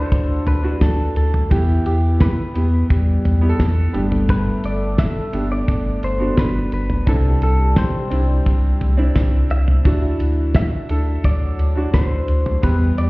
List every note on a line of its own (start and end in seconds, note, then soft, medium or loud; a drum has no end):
0.00 1.12 D3 medium
0.00 1.53 D3 medium
0.00 0.63 D4 medium
0.00 1.12 D4 medium
0.00 0.64 E4 medium
0.00 0.64 F#4 medium
0.00 0.58 A4 medium
0.00 0.44 C5 medium
0.12 0.40 D2 loud
0.12 kick loud
0.12 ride medium
0.46 0.75 D2 medium
0.46 0.83 B4 loud
0.46 floor tom medium
0.46 ride medium
0.63 1.44 D4 medium
0.63 1.44 E4 medium
0.63 1.45 F#4 medium
0.81 1.10 D2 loud
0.81 1.16 A4 medium
0.81 kick medium
0.81 snare loud
0.81 ride medium
1.16 1.45 D2 loud
1.16 1.51 A4 medium
1.16 ride medium
1.34 floor tom medium
1.50 1.80 E2 loud
1.50 2.51 E3 medium
1.50 2.53 E3 medium
1.50 2.47 B3 medium
1.50 2.48 E4 medium
1.50 2.53 E4 medium
1.50 2.48 G4 medium
1.50 1.85 G4 medium
1.50 kick loud
1.50 ride medium
1.86 2.28 E2 loud
1.86 2.22 G4 medium
1.86 ride medium
2.20 2.87 B4 medium
2.20 kick loud
2.20 snare loud
2.20 ride medium
2.54 2.84 E2 loud
2.54 3.35 B3 medium
2.54 3.36 E4 medium
2.54 3.36 G4 medium
2.54 ride medium
2.90 3.19 E2 loud
2.90 3.58 G3 medium
2.90 3.58 G4 medium
2.90 kick loud
2.90 ride medium
3.25 3.54 E2 loud
3.25 floor tom medium
3.25 ride medium
3.41 3.91 B3 medium
3.41 3.94 E4 medium
3.41 3.49 G4 medium
3.49 3.98 A4 loud
3.60 3.88 E2 loud
3.60 kick loud
3.60 snare loud
3.60 ride medium
3.93 4.52 G1 loud
3.93 4.94 G2 medium
3.93 6.68 A3 medium
3.93 5.23 B3 medium
3.93 5.23 D4 medium
3.93 5.23 G4 loud
3.93 6.68 A4 loud
3.93 ride medium
4.12 floor tom medium
4.29 4.65 B4 medium
4.29 kick loud
4.29 ride medium
4.64 5.07 G1 loud
4.64 4.99 D5 loud
4.64 ride medium
4.98 5.51 E5 loud
4.98 kick loud
4.98 snare loud
4.98 ride medium
5.33 5.62 G1 medium
5.33 6.14 B3 medium
5.33 6.14 D4 medium
5.33 6.14 G4 medium
5.33 ride medium
5.52 6.00 D5 loud
5.68 5.97 G1 medium
5.68 kick loud
5.68 ride medium
6.03 6.32 G1 medium
6.03 6.39 C5 medium
6.03 ride medium
6.19 7.00 B3 medium
6.19 7.01 D4 medium
6.19 7.01 F#4 medium
6.37 6.66 G1 loud
6.37 6.72 B4 loud
6.37 kick medium
6.37 snare medium
6.37 ride medium
6.72 7.01 G1 loud
6.72 7.06 B4 medium
6.72 ride soft
6.90 floor tom medium
7.06 7.36 C2 loud
7.06 8.08 C3 medium
7.06 9.46 G3 medium
7.06 8.04 C4 medium
7.06 8.04 D4 medium
7.06 8.04 E4 medium
7.06 9.46 G4 medium
7.06 7.40 A4 medium
7.06 kick loud
7.06 ride medium
7.42 7.85 C2 loud
7.42 7.75 A4 medium
7.42 ride medium
7.76 8.43 C5 medium
7.76 kick loud
7.76 snare loud
7.76 ride medium
8.10 8.40 C2 medium
8.10 8.92 C4 medium
8.10 8.92 D4 medium
8.10 8.92 E4 medium
8.10 ride medium
8.46 8.75 C2 loud
8.46 kick medium
8.46 ride medium
8.81 9.10 C2 loud
8.81 floor tom medium
8.81 ride medium
8.97 9.78 C4 medium
8.97 9.79 D4 medium
8.97 9.79 E4 loud
9.15 9.44 C2 loud
9.15 kick loud
9.15 snare loud
9.15 ride medium
9.50 9.79 C2 loud
9.50 10.16 E5 loud
9.50 ride soft
9.68 floor tom medium
9.85 10.14 D2 loud
9.85 10.86 D3 medium
9.85 10.87 E3 medium
9.85 10.82 D4 medium
9.85 10.88 E4 medium
9.85 10.82 E4 medium
9.85 10.83 F#4 medium
9.85 kick loud
9.85 ride medium
10.20 10.63 D2 loud
10.20 ride medium
10.55 11.25 E5 medium
10.55 kick loud
10.55 snare loud
10.55 ride medium
10.89 11.18 D2 medium
10.89 11.70 D4 medium
10.89 11.70 E4 medium
10.89 11.71 A4 medium
10.89 ride medium
11.24 11.53 D2 loud
11.24 12.27 F#3 medium
11.24 12.27 F#4 medium
11.24 11.90 D5 medium
11.24 kick loud
11.24 ride medium
11.59 11.88 D2 medium
11.59 ride medium
11.75 12.56 D4 medium
11.75 12.57 E4 medium
11.75 12.57 F#4 medium
11.94 12.22 D2 loud
11.94 12.63 C5 medium
11.94 kick loud
11.94 snare loud
11.94 ride medium
12.28 12.57 D2 loud
12.28 ride medium
12.46 floor tom medium
12.62 12.92 E2 loud
12.62 13.10 E3 medium
12.62 13.10 G3 medium
12.62 13.10 B3 medium
12.62 13.10 E4 medium
12.62 13.10 G4 medium
12.62 12.98 B4 medium
12.62 kick loud
12.62 ride medium
12.98 13.10 E2 medium
12.98 13.10 D5 medium
12.98 ride medium